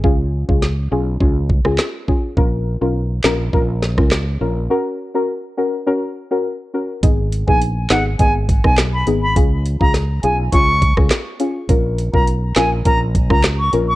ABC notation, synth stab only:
X:1
M:4/4
L:1/16
Q:1/4=103
K:G#dor
V:1 name="Synth stab"
[CEG]3 [CEG] z2 [CEG] z [CEG] z2 [CEG] z2 [CEG] z | [CEA]3 [CEA] z2 [CEA] z [CEA] z2 [CEA] z2 [CEA] z | [CFA]3 [CFA] z2 [CFA] z [CFA] z2 [CFA] z2 [CFA] z | [B,DG]3 [B,DG] z2 [B,DG] z [B,DG] z2 [B,DG] z2 [B,DG] z |
[CEG]3 [CEG] z2 [CEG] z [CEG] z2 [CEG] z2 [CEG] z | [CEA]3 [CEA] z2 [CEA] z [CEA] z2 [CEA] z2 [CEA] z |]